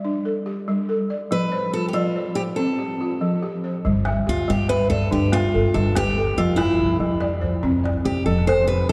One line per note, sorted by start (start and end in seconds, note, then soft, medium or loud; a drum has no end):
0.00 0.47 D5 medium
0.05 0.47 D4 medium
0.25 0.88 A4 medium
0.46 1.10 G4 medium
0.68 1.10 G3 medium
0.89 1.52 A4 medium
1.10 1.52 D5 medium
1.31 1.73 F3 medium
1.31 1.71 B4 loud
1.52 2.15 C5 medium
1.73 2.37 F4 medium
1.73 1.87 A4 medium
1.88 1.95 G4 medium
1.93 2.37 F3 medium
1.93 2.33 F4 medium
1.93 2.58 D5 medium
2.16 2.35 C5 medium
2.35 2.41 G4 medium
2.35 3.00 C5 medium
2.56 3.00 C4 medium
2.56 3.58 A4 medium
2.79 3.41 G4 medium
3.01 3.64 F4 medium
3.21 3.63 F3 medium
3.42 4.06 G4 medium
3.64 4.06 C5 medium
3.85 4.21 G1 medium
3.85 4.27 G3 medium
3.85 calabash thump medium
4.05 4.68 E5 medium
4.05 calabash click medium
4.18 calabash click soft
4.27 4.45 D2 medium
4.27 4.50 F4 loud
4.27 4.90 G4 medium
4.38 calabash thump medium
4.48 5.03 G2 medium
4.48 4.90 G3 medium
4.48 4.69 G4 medium
4.48 calabash click soft
4.69 4.89 B4 loud
4.69 5.31 E5 medium
4.69 calabash click medium
4.90 5.09 A4 medium
4.90 5.53 D5 medium
4.90 calabash thump medium
5.11 5.47 G1 medium
5.11 5.53 D4 medium
5.11 5.33 G4 medium
5.11 calabash click soft
5.32 5.76 F4 medium
5.32 5.95 E5 medium
5.32 calabash click medium
5.43 calabash click soft
5.54 5.63 G1 medium
5.54 6.16 A4 medium
5.74 6.28 G1 loud
5.74 6.16 G3 medium
5.74 5.96 A4 medium
5.85 calabash click soft
5.95 6.39 G4 loud
5.95 6.58 B4 medium
5.95 calabash thump medium
5.95 calabash click medium
6.17 6.59 A4 medium
6.17 calabash click soft
6.27 calabash click soft
6.37 6.73 F1 medium
6.37 6.80 F3 medium
6.37 6.59 F4 medium
6.37 calabash thump medium
6.56 6.96 E4 medium
6.56 calabash click medium
6.70 calabash click soft
6.80 6.97 C2 medium
6.90 calabash thump soft
7.00 7.53 F2 medium
7.00 7.42 F3 medium
7.00 calabash click soft
7.21 7.83 D5 medium
7.21 calabash click medium
7.41 8.05 C5 medium
7.41 calabash thump medium
7.63 7.99 F1 medium
7.63 8.05 C4 medium
7.63 calabash click soft
7.84 8.47 D5 medium
7.84 calabash click medium
7.97 calabash thump soft
7.97 calabash click soft
8.05 8.14 F1 medium
8.05 8.67 G4 medium
8.05 8.25 G4 medium
8.26 8.79 F1 medium
8.26 8.68 F3 medium
8.26 8.45 A4 medium
8.38 calabash click soft
8.47 8.92 A4 medium
8.47 8.67 C5 medium
8.47 calabash click medium
8.68 8.92 G4 medium
8.68 8.89 B4 medium
8.68 calabash click soft
8.81 calabash click soft
8.89 8.92 G3 medium